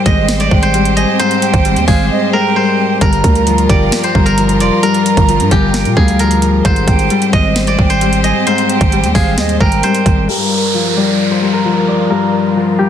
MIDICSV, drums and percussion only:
0, 0, Header, 1, 2, 480
1, 0, Start_track
1, 0, Tempo, 454545
1, 1262, Time_signature, 4, 2, 24, 8
1, 13616, End_track
2, 0, Start_track
2, 0, Title_t, "Drums"
2, 62, Note_on_c, 9, 36, 90
2, 62, Note_on_c, 9, 42, 63
2, 167, Note_off_c, 9, 36, 0
2, 167, Note_off_c, 9, 42, 0
2, 301, Note_on_c, 9, 38, 120
2, 301, Note_on_c, 9, 42, 83
2, 407, Note_off_c, 9, 38, 0
2, 407, Note_off_c, 9, 42, 0
2, 422, Note_on_c, 9, 42, 64
2, 527, Note_off_c, 9, 42, 0
2, 542, Note_on_c, 9, 36, 94
2, 648, Note_off_c, 9, 36, 0
2, 661, Note_on_c, 9, 42, 65
2, 767, Note_off_c, 9, 42, 0
2, 782, Note_on_c, 9, 42, 91
2, 887, Note_off_c, 9, 42, 0
2, 902, Note_on_c, 9, 42, 69
2, 1008, Note_off_c, 9, 42, 0
2, 1022, Note_on_c, 9, 42, 70
2, 1128, Note_off_c, 9, 42, 0
2, 1263, Note_on_c, 9, 42, 78
2, 1368, Note_off_c, 9, 42, 0
2, 1383, Note_on_c, 9, 42, 58
2, 1488, Note_off_c, 9, 42, 0
2, 1502, Note_on_c, 9, 42, 87
2, 1608, Note_off_c, 9, 42, 0
2, 1622, Note_on_c, 9, 36, 97
2, 1622, Note_on_c, 9, 42, 57
2, 1728, Note_off_c, 9, 36, 0
2, 1728, Note_off_c, 9, 42, 0
2, 1743, Note_on_c, 9, 42, 73
2, 1848, Note_off_c, 9, 42, 0
2, 1863, Note_on_c, 9, 42, 59
2, 1969, Note_off_c, 9, 42, 0
2, 1983, Note_on_c, 9, 36, 91
2, 1983, Note_on_c, 9, 46, 71
2, 2088, Note_off_c, 9, 36, 0
2, 2088, Note_off_c, 9, 46, 0
2, 3182, Note_on_c, 9, 36, 115
2, 3182, Note_on_c, 9, 42, 79
2, 3287, Note_off_c, 9, 42, 0
2, 3288, Note_off_c, 9, 36, 0
2, 3302, Note_on_c, 9, 42, 58
2, 3408, Note_off_c, 9, 42, 0
2, 3421, Note_on_c, 9, 36, 98
2, 3422, Note_on_c, 9, 42, 91
2, 3527, Note_off_c, 9, 36, 0
2, 3528, Note_off_c, 9, 42, 0
2, 3542, Note_on_c, 9, 42, 56
2, 3648, Note_off_c, 9, 42, 0
2, 3662, Note_on_c, 9, 42, 75
2, 3768, Note_off_c, 9, 42, 0
2, 3782, Note_on_c, 9, 42, 59
2, 3888, Note_off_c, 9, 42, 0
2, 3902, Note_on_c, 9, 36, 92
2, 3902, Note_on_c, 9, 42, 67
2, 4007, Note_off_c, 9, 42, 0
2, 4008, Note_off_c, 9, 36, 0
2, 4142, Note_on_c, 9, 38, 122
2, 4142, Note_on_c, 9, 42, 81
2, 4247, Note_off_c, 9, 42, 0
2, 4248, Note_off_c, 9, 38, 0
2, 4262, Note_on_c, 9, 42, 66
2, 4368, Note_off_c, 9, 42, 0
2, 4382, Note_on_c, 9, 36, 91
2, 4488, Note_off_c, 9, 36, 0
2, 4502, Note_on_c, 9, 42, 62
2, 4608, Note_off_c, 9, 42, 0
2, 4622, Note_on_c, 9, 42, 86
2, 4728, Note_off_c, 9, 42, 0
2, 4743, Note_on_c, 9, 42, 66
2, 4848, Note_off_c, 9, 42, 0
2, 4862, Note_on_c, 9, 42, 71
2, 4968, Note_off_c, 9, 42, 0
2, 5102, Note_on_c, 9, 42, 75
2, 5207, Note_off_c, 9, 42, 0
2, 5222, Note_on_c, 9, 42, 58
2, 5327, Note_off_c, 9, 42, 0
2, 5342, Note_on_c, 9, 42, 89
2, 5448, Note_off_c, 9, 42, 0
2, 5462, Note_on_c, 9, 36, 99
2, 5462, Note_on_c, 9, 42, 54
2, 5567, Note_off_c, 9, 36, 0
2, 5567, Note_off_c, 9, 42, 0
2, 5582, Note_on_c, 9, 42, 76
2, 5688, Note_off_c, 9, 42, 0
2, 5702, Note_on_c, 9, 42, 59
2, 5807, Note_off_c, 9, 42, 0
2, 5821, Note_on_c, 9, 42, 66
2, 5822, Note_on_c, 9, 36, 89
2, 5927, Note_off_c, 9, 36, 0
2, 5927, Note_off_c, 9, 42, 0
2, 6061, Note_on_c, 9, 38, 122
2, 6061, Note_on_c, 9, 42, 81
2, 6166, Note_off_c, 9, 42, 0
2, 6167, Note_off_c, 9, 38, 0
2, 6182, Note_on_c, 9, 42, 63
2, 6287, Note_off_c, 9, 42, 0
2, 6302, Note_on_c, 9, 36, 93
2, 6407, Note_off_c, 9, 36, 0
2, 6421, Note_on_c, 9, 42, 64
2, 6527, Note_off_c, 9, 42, 0
2, 6541, Note_on_c, 9, 42, 88
2, 6647, Note_off_c, 9, 42, 0
2, 6661, Note_on_c, 9, 42, 67
2, 6767, Note_off_c, 9, 42, 0
2, 6781, Note_on_c, 9, 42, 70
2, 6887, Note_off_c, 9, 42, 0
2, 7021, Note_on_c, 9, 42, 78
2, 7022, Note_on_c, 9, 36, 116
2, 7127, Note_off_c, 9, 36, 0
2, 7127, Note_off_c, 9, 42, 0
2, 7141, Note_on_c, 9, 42, 58
2, 7247, Note_off_c, 9, 42, 0
2, 7261, Note_on_c, 9, 36, 100
2, 7261, Note_on_c, 9, 42, 90
2, 7367, Note_off_c, 9, 36, 0
2, 7367, Note_off_c, 9, 42, 0
2, 7381, Note_on_c, 9, 42, 54
2, 7486, Note_off_c, 9, 42, 0
2, 7501, Note_on_c, 9, 42, 75
2, 7607, Note_off_c, 9, 42, 0
2, 7622, Note_on_c, 9, 42, 59
2, 7727, Note_off_c, 9, 42, 0
2, 7742, Note_on_c, 9, 36, 93
2, 7742, Note_on_c, 9, 42, 67
2, 7847, Note_off_c, 9, 42, 0
2, 7848, Note_off_c, 9, 36, 0
2, 7982, Note_on_c, 9, 38, 123
2, 7982, Note_on_c, 9, 42, 81
2, 8087, Note_off_c, 9, 38, 0
2, 8087, Note_off_c, 9, 42, 0
2, 8102, Note_on_c, 9, 42, 62
2, 8208, Note_off_c, 9, 42, 0
2, 8222, Note_on_c, 9, 36, 91
2, 8328, Note_off_c, 9, 36, 0
2, 8342, Note_on_c, 9, 42, 65
2, 8447, Note_off_c, 9, 42, 0
2, 8462, Note_on_c, 9, 42, 88
2, 8568, Note_off_c, 9, 42, 0
2, 8582, Note_on_c, 9, 42, 69
2, 8687, Note_off_c, 9, 42, 0
2, 8702, Note_on_c, 9, 42, 71
2, 8808, Note_off_c, 9, 42, 0
2, 8942, Note_on_c, 9, 42, 78
2, 9048, Note_off_c, 9, 42, 0
2, 9062, Note_on_c, 9, 42, 58
2, 9168, Note_off_c, 9, 42, 0
2, 9182, Note_on_c, 9, 42, 89
2, 9288, Note_off_c, 9, 42, 0
2, 9302, Note_on_c, 9, 36, 101
2, 9302, Note_on_c, 9, 42, 55
2, 9408, Note_off_c, 9, 36, 0
2, 9408, Note_off_c, 9, 42, 0
2, 9422, Note_on_c, 9, 42, 75
2, 9528, Note_off_c, 9, 42, 0
2, 9542, Note_on_c, 9, 42, 58
2, 9648, Note_off_c, 9, 42, 0
2, 9662, Note_on_c, 9, 36, 89
2, 9662, Note_on_c, 9, 46, 71
2, 9767, Note_off_c, 9, 46, 0
2, 9768, Note_off_c, 9, 36, 0
2, 9902, Note_on_c, 9, 38, 121
2, 9902, Note_on_c, 9, 42, 80
2, 10008, Note_off_c, 9, 38, 0
2, 10008, Note_off_c, 9, 42, 0
2, 10023, Note_on_c, 9, 42, 63
2, 10128, Note_off_c, 9, 42, 0
2, 10143, Note_on_c, 9, 36, 90
2, 10248, Note_off_c, 9, 36, 0
2, 10263, Note_on_c, 9, 42, 64
2, 10368, Note_off_c, 9, 42, 0
2, 10383, Note_on_c, 9, 42, 89
2, 10488, Note_off_c, 9, 42, 0
2, 10502, Note_on_c, 9, 42, 67
2, 10608, Note_off_c, 9, 42, 0
2, 10622, Note_on_c, 9, 36, 102
2, 10622, Note_on_c, 9, 42, 68
2, 10727, Note_off_c, 9, 36, 0
2, 10728, Note_off_c, 9, 42, 0
2, 13616, End_track
0, 0, End_of_file